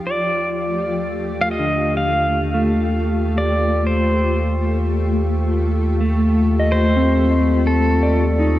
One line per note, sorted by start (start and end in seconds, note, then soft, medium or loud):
0.00 0.98 D#4 medium
0.00 2.00 F4 medium
0.00 8.59 F4 medium
0.00 8.59 G4 medium
0.05 8.59 D#2 medium
0.05 8.59 A3 medium
0.05 1.41 D5 medium
1.41 1.48 F5 medium
1.51 1.97 D#5 medium
1.59 2.72 D3 medium
1.97 3.37 F5 loud
2.54 5.99 A3 medium
3.38 3.87 D5 medium
3.87 4.78 C5 medium
6.01 7.14 A3 medium
6.60 8.21 D#5 medium
6.72 7.70 C5 loud
6.96 8.57 C4 medium
7.67 8.59 A4 loud
8.03 8.59 D5 medium
8.39 8.59 D#4 medium